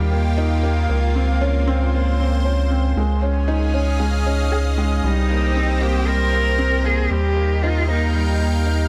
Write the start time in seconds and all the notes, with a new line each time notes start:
Already playing: D#2 D#3 G3 A#3 D#4 F4 G4
0.12 A#3
0.38 D#4
0.63 A#3
0.89 C#2 A#3
1.15 C4
1.41 C#4
1.49 C5
1.67 C4
1.93 A#3
2.20 C4
2.45 C#4
2.71 C4
2.96 C#2 G#3 C#4
3.12 G#4
3.22 C#4
3.48 D#4 F5
3.53 D#5
3.74 C#4
4.00 G#3
4.26 C#4
4.52 G#4
4.78 G#3
5.04 C2 G3 C4 D#4
5.15 G4
5.30 A#3
5.42 C5
5.56 C4
5.81 A#3 G4
6.07 G3 A#4
6.33 A#3
6.58 C4
6.84 A#3 G#4
7.10 D#2 G3 D#4 G4
7.37 A#3
7.42 A#4
7.63 D#4 F4
7.71 F5 G5
7.89 A#3 D#4
8.14 G3
8.40 A#3
8.66 D#4